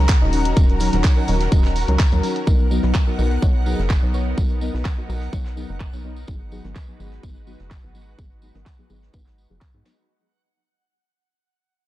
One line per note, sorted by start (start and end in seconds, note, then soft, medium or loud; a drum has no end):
0.00 0.17 C#2 medium
0.00 2.43 D#3 medium
0.00 0.19 F#3 medium
0.00 0.19 C#4 medium
0.00 2.43 C#4 medium
0.00 0.19 D#4 medium
0.00 2.43 F#4 medium
0.00 0.19 G#4 medium
0.00 6.24 A#4 medium
0.00 10.10 F#5 medium
0.00 2.38 A#5 loud
0.08 kick loud
0.08 snare loud
0.08 clap loud
0.08 closed hi-hat medium
0.08 tambourine medium
0.21 0.54 D#1 medium
0.21 0.30 F#3 medium
0.21 0.30 C#4 medium
0.21 0.30 D#4 medium
0.21 0.30 D#5 medium
0.21 closed hi-hat soft
0.33 0.54 F#3 medium
0.33 0.54 C#4 medium
0.33 0.54 D#4 medium
0.33 0.54 D#5 medium
0.33 open hi-hat medium
0.45 closed hi-hat soft
0.57 0.90 D#1 loud
0.57 0.78 F#3 medium
0.57 0.78 C#4 medium
0.57 0.78 D#4 medium
0.57 0.78 A#4 loud
0.57 kick loud
0.57 closed hi-hat medium
0.57 tambourine medium
0.69 closed hi-hat soft
0.80 0.91 F#3 medium
0.80 0.91 C#4 medium
0.80 0.91 D#4 medium
0.80 0.91 A#4 medium
0.80 open hi-hat loud
0.80 tambourine medium
0.93 1.02 D#1 medium
0.93 1.14 F#3 medium
0.93 1.14 C#4 medium
0.93 1.14 D#4 medium
0.93 1.14 C#5 medium
0.93 snare soft
0.93 closed hi-hat soft
1.04 kick loud
1.04 snare loud
1.04 clap loud
1.04 closed hi-hat medium
1.04 tambourine medium
1.17 1.23 F#3 medium
1.17 1.23 C#4 medium
1.17 1.23 D#4 medium
1.17 1.23 A#4 loud
1.28 1.48 D#1 medium
1.28 1.49 F#3 medium
1.28 1.49 C#4 medium
1.28 1.49 D#4 medium
1.28 1.49 A#4 loud
1.28 open hi-hat medium
1.28 tambourine medium
1.41 snare soft
1.41 closed hi-hat soft
1.52 1.85 D#1 medium
1.52 1.73 F#3 medium
1.52 1.73 C#4 medium
1.52 1.73 D#4 medium
1.52 1.73 D#5 loud
1.52 kick loud
1.52 closed hi-hat medium
1.52 tambourine medium
1.64 snare soft
1.64 clap soft
1.64 closed hi-hat soft
1.76 open hi-hat loud
1.76 tambourine medium
1.88 1.98 C#2 medium
1.88 1.94 F#3 medium
1.88 1.94 C#4 medium
1.88 1.94 D#4 medium
1.88 1.94 A#4 medium
1.88 closed hi-hat soft
1.99 kick loud
1.99 snare loud
1.99 clap loud
1.99 closed hi-hat medium
1.99 tambourine medium
2.12 2.21 D#2 medium
2.12 2.18 F#3 medium
2.12 2.18 C#4 medium
2.12 2.18 D#4 medium
2.12 2.18 A#4 loud
2.12 closed hi-hat soft
2.23 2.34 F#3 medium
2.23 2.34 C#4 medium
2.23 2.34 D#4 medium
2.23 2.34 A#4 medium
2.23 open hi-hat medium
2.23 tambourine medium
2.36 closed hi-hat soft
2.47 2.80 B1 medium
2.47 2.68 F#3 medium
2.47 2.68 B3 medium
2.47 6.24 B3 medium
2.47 2.68 D#4 medium
2.47 10.05 D#4 medium
2.47 2.68 A#4 loud
2.47 kick loud
2.47 tambourine medium
2.71 2.82 F#3 medium
2.71 2.82 B3 medium
2.71 2.82 D#4 medium
2.71 2.82 A#4 medium
2.71 tambourine medium
2.83 2.93 B1 medium
2.83 3.04 F#3 medium
2.83 3.04 B3 medium
2.83 3.04 D#4 medium
2.83 3.04 B4 medium
2.83 snare soft
2.94 kick loud
2.94 snare loud
2.94 clap loud
2.94 tambourine medium
3.07 3.13 F#3 medium
3.07 3.13 B3 medium
3.07 3.13 D#4 medium
3.07 3.13 A#4 medium
3.19 3.39 B1 medium
3.19 3.40 F#3 medium
3.19 3.40 B3 medium
3.19 3.40 D#4 medium
3.19 3.40 A#4 loud
3.19 tambourine medium
3.30 snare soft
3.42 3.75 B1 medium
3.42 3.63 F#3 medium
3.42 3.63 B3 medium
3.42 3.63 D#4 medium
3.42 3.63 C#5 loud
3.42 kick loud
3.42 tambourine medium
3.66 3.99 F#3 medium
3.66 3.99 B3 medium
3.66 3.99 D#4 medium
3.66 3.99 G#4 medium
3.66 tambourine medium
3.79 3.98 F#1 medium
3.79 snare soft
3.90 kick loud
3.90 snare loud
3.90 clap loud
3.90 tambourine medium
4.02 4.35 B1 medium
4.02 4.11 F#3 medium
4.02 4.11 B3 medium
4.02 4.11 D#4 medium
4.02 4.11 C#5 medium
4.02 closed hi-hat soft
4.14 4.35 F#3 medium
4.14 4.35 B3 medium
4.14 4.35 D#4 medium
4.14 4.35 C#5 medium
4.14 tambourine medium
4.37 4.71 B1 medium
4.37 4.59 F#3 medium
4.37 4.59 B3 medium
4.37 4.59 D#4 medium
4.37 4.59 A#4 loud
4.37 kick loud
4.37 tambourine medium
4.50 closed hi-hat soft
4.61 4.72 F#3 medium
4.61 4.72 B3 medium
4.61 4.72 D#4 medium
4.61 4.72 A#4 medium
4.61 tambourine medium
4.74 4.83 B1 medium
4.74 4.95 F#3 medium
4.74 4.95 B3 medium
4.74 4.95 D#4 medium
4.74 4.95 B4 medium
4.74 snare soft
4.85 kick loud
4.85 snare loud
4.85 clap loud
4.85 tambourine medium
4.98 5.04 F#3 medium
4.98 5.04 B3 medium
4.98 5.04 D#4 medium
4.98 5.04 A#4 medium
5.09 5.29 B1 medium
5.09 5.30 F#3 medium
5.09 5.30 B3 medium
5.09 5.30 D#4 medium
5.09 5.30 A#4 loud
5.09 tambourine medium
5.21 snare soft
5.33 5.66 B1 medium
5.33 5.54 F#3 loud
5.33 5.54 B3 medium
5.33 5.54 D#4 medium
5.33 5.54 C#5 loud
5.33 kick loud
5.33 tambourine medium
5.45 snare soft
5.45 clap soft
5.57 5.90 F#3 medium
5.57 5.90 B3 medium
5.57 5.90 D#4 medium
5.57 5.90 G#4 medium
5.57 tambourine medium
5.69 5.89 F#1 medium
5.80 kick loud
5.80 clap loud
5.80 tambourine medium
5.93 6.25 B1 medium
5.93 6.02 F#3 medium
5.93 6.02 B3 medium
5.93 6.02 D#4 medium
5.93 6.02 C#5 medium
5.93 tambourine medium
6.04 6.25 F#3 medium
6.04 6.25 B3 medium
6.04 6.25 D#4 medium
6.04 6.25 C#5 medium
6.16 tambourine soft
6.27 6.61 G#1 loud
6.27 6.49 F#3 medium
6.27 10.05 G#3 medium
6.27 6.49 B3 medium
6.27 6.49 D#4 medium
6.27 10.05 F#4 medium
6.27 6.49 G#4 loud
6.27 10.05 B4 medium
6.27 kick loud
6.27 tambourine medium
6.52 6.62 F#3 medium
6.52 6.63 B3 medium
6.52 6.62 D#4 medium
6.52 6.62 G#4 medium
6.52 tambourine medium
6.64 6.74 G#1 medium
6.64 6.85 F#3 medium
6.64 6.85 B3 medium
6.64 6.85 D#4 medium
6.64 6.85 A#4 medium
6.64 snare soft
6.76 kick loud
6.76 snare loud
6.76 clap loud
6.76 tambourine medium
6.88 6.94 F#3 medium
6.88 6.94 B3 medium
6.88 6.94 D#4 medium
6.88 6.94 G#4 medium
6.99 7.20 G#1 medium
6.99 7.21 F#3 medium
6.99 7.21 B3 medium
6.99 7.21 D#4 medium
6.99 7.21 G#4 loud
6.99 tambourine medium
7.12 snare soft
7.23 7.56 G#1 medium
7.23 7.44 F#3 medium
7.23 7.44 B3 medium
7.23 7.44 D#4 medium
7.23 7.44 B4 loud
7.23 kick loud
7.23 tambourine medium
7.47 7.80 F#3 medium
7.47 7.80 B3 medium
7.47 7.80 D#4 medium
7.47 7.80 F#4 medium
7.47 tambourine medium
7.60 7.79 F#1 medium
7.60 snare soft
7.71 kick loud
7.71 snare medium
7.71 clap loud
7.71 tambourine medium
7.83 8.16 G#1 medium
7.83 7.92 F#3 medium
7.83 7.92 B3 medium
7.83 7.92 D#4 medium
7.83 7.92 B4 medium
7.83 closed hi-hat soft
7.95 8.16 F#3 medium
7.95 8.16 B3 medium
7.95 8.16 D#4 medium
7.95 8.16 B4 medium
7.95 tambourine medium
8.18 8.52 G#1 medium
8.18 8.40 F#3 medium
8.18 8.40 B3 medium
8.18 8.40 D#4 medium
8.18 8.40 G#4 loud
8.18 kick loud
8.18 tambourine medium
8.32 closed hi-hat soft
8.42 8.53 F#3 medium
8.42 8.53 B3 medium
8.42 8.53 D#4 medium
8.42 8.53 G#4 medium
8.42 tambourine medium
8.55 8.64 G#1 medium
8.55 8.76 F#3 medium
8.55 8.76 B3 medium
8.55 8.76 D#4 medium
8.55 8.76 A#4 medium
8.55 snare soft
8.66 kick loud
8.66 snare loud
8.66 clap loud
8.66 tambourine medium
8.79 8.85 F#3 medium
8.79 8.85 B3 medium
8.79 8.85 D#4 medium
8.79 8.85 G#4 medium
8.90 9.10 G#1 medium
8.90 9.11 F#3 medium
8.90 9.11 B3 medium
8.90 9.11 D#4 medium
8.90 9.11 G#4 loud
8.90 tambourine medium
9.03 snare soft
9.13 9.47 G#1 medium
9.13 9.35 F#3 medium
9.13 9.35 B3 medium
9.13 9.35 D#4 medium
9.13 9.35 B4 loud
9.13 kick loud
9.13 tambourine medium
9.26 snare soft
9.26 clap soft
9.38 tambourine medium
9.50 9.60 F#1 medium
9.50 9.56 F#3 medium
9.50 9.56 B3 medium
9.50 9.56 D#4 medium
9.50 9.56 G#4 medium
9.50 closed hi-hat soft
9.61 kick loud
9.61 snare loud
9.61 clap loud
9.61 tambourine medium
9.74 9.83 G#2 medium
9.74 9.80 F#3 medium
9.74 9.80 B3 medium
9.74 9.80 D#4 medium
9.74 9.80 G#4 medium
9.85 9.96 F#3 medium
9.85 9.96 B3 medium
9.85 9.96 D#4 medium
9.85 9.96 G#4 medium
9.85 snare loud
9.85 tambourine medium